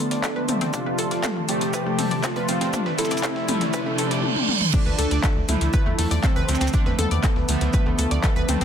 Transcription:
Already playing: D3 F3 A3 B3 A4 D5 A5 C6, riser
0.11 D2 D5, snare, closed hi-hat
0.24 A4, kick, snare, clap, closed hi-hat, shaker
0.36 D2 B4
0.49 D2 D3 F3 A3 C4, open hi-hat, mid tom, shaker
0.61 D2 C4, snare, closed hi-hat
0.74 C3 F3 A3 D4 F4 A4 C5 A5, kick, closed hi-hat, shaker
0.86 F2 B4
0.99 F2 A4, open hi-hat, shaker
1.11 F2 D5, snare, closed hi-hat
1.24 A4, kick, snare, clap, closed hi-hat, mid tom, shaker
1.36 F2
1.49 F2 C3 F3 A3 G4, open hi-hat, shaker
1.61 F2, snare, closed hi-hat
1.74 B4, kick, closed hi-hat, shaker
1.86 G2 A3
1.99 G2 A4, snare, open hi-hat, mid tom
2.11 G2 D5, closed hi-hat
2.24 F4 A4, kick, snare, clap, closed hi-hat, shaker
2.36 F2 B4, closed hi-hat
2.48 F2 C3 F3 A3 C4, snare, open hi-hat, shaker
2.61 F2 C4, snare, closed hi-hat
2.73 C3 F3 A3 D4, kick, closed hi-hat, mid tom, shaker
2.86 G2 B4, snare
2.98 G2 E4 A4, snare, open hi-hat, shaker
3.05 snare, shaker
3.11 G2 D5, snare, closed hi-hat, shaker
3.17 snare, shaker
3.23 A4, kick, snare, clap, closed hi-hat, shaker
3.36 F2, snare
3.48 F2 C3 F3 A3, open hi-hat, mid tom, shaker
3.61 F2, snare, closed hi-hat
3.73 B4, kick, closed hi-hat, reverse cymbal, shaker
3.86 F2 A3
3.98 F2 A4, open hi-hat, shaker
4.11 F2 D5, snare, closed hi-hat
4.24 high tom
4.36 high tom
4.49 mid tom
4.61 mid tom
4.74 D3 F3 A3 D4, kick, closed hi-hat, mid tom, crash, shaker
4.86 D2 B4
4.99 D2 A4, open hi-hat, shaker
5.11 D2 D5, snare, closed hi-hat
5.23 A4, kick, snare, clap, closed hi-hat, shaker
5.36 D2
5.49 D2 D3 F3 A3 E4, open hi-hat, mid tom, shaker
5.58 D2 A5, snare, closed hi-hat
5.73 B4, kick, closed hi-hat, shaker
5.86 E2 A3
5.98 E2 A4, snare, open hi-hat
6.11 E2 D5, closed hi-hat
6.24 C4 A4, kick, snare, clap, closed hi-hat, mid tom, shaker
6.36 D2 B4, closed hi-hat
6.48 D2 D3 F3 A3 C4, snare, open hi-hat, shaker
6.55 snare, shaker
6.61 D2 C4, snare, closed hi-hat, shaker
6.67 snare, shaker
6.74 D3 F3 A3 D4, kick, closed hi-hat, shaker
6.86 E2 B4, snare
6.99 E2 B3 A4, open hi-hat, mid tom
7.11 E2 D5, closed hi-hat
7.24 A4, kick, snare, clap, closed hi-hat, shaker
7.36 D2, snare
7.49 D2 D3 F3 A3, open hi-hat, shaker
7.61 D2, snare, closed hi-hat
7.74 B4, kick, closed hi-hat, mid tom, shaker
7.86 D2 A3
7.99 D2 A4, open hi-hat, shaker
8.11 D2 D5, snare, closed hi-hat
8.24 A4, kick, snare, clap, closed hi-hat, shaker
8.36 D2 B4
8.49 D2 D3 F3 A3 C4, open hi-hat, mid tom, shaker
8.61 D2 C4, snare, closed hi-hat

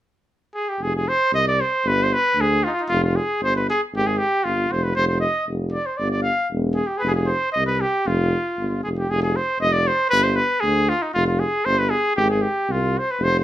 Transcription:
0.54 G#4
0.69 G4
0.79 F1 G#4
0.96 G#4
1.08 C5
1.32 C2 D#5
1.47 D5
1.60 C5
1.84 G1 B4
2.03 C5
2.14 B4
2.35 D2
2.41 G#4
2.64 D#4 F4
2.71 F4
2.80 D#4
2.89 F1 F4
3.04 F4
3.16 G#4
3.40 G1 C5
3.56 B4
3.70 G#4
3.93 G#1 G4
4.07 G#4
4.18 G4
4.44 G1 F4
4.70 F1 C5
4.83 B4
4.95 F1 C5
5.08 C5
5.20 D#5
5.48 F1
5.72 D5
5.86 C5
5.97 G1 D5
6.10 D5
6.23 F5
6.51 E1
6.75 G#4
6.87 G4
6.97 G#4 B4
7.03 F1
7.07 G#4
7.14 G#4
7.27 C5
7.53 C2 D#5
7.67 B4
7.81 G4
8.05 F1 F4
8.57 G1
8.84 F1 G#4
8.99 G4
9.09 F1 G#4
9.23 G#4
9.36 C5
9.60 F1 D#5
9.73 D5
9.87 C5
10.10 G1 B4
10.24 C5
10.36 B4
10.60 D2 G#4
10.89 F4
11.02 D#4
11.14 F1 F4
11.27 F4
11.40 G#4
11.65 G1 C5
11.79 B4
11.90 G#4
12.17 G#1 G4
12.30 G#4
12.42 G4
12.68 C2 F4
12.98 C5
13.11 B4
13.19 F1
13.24 C5
13.40 C5

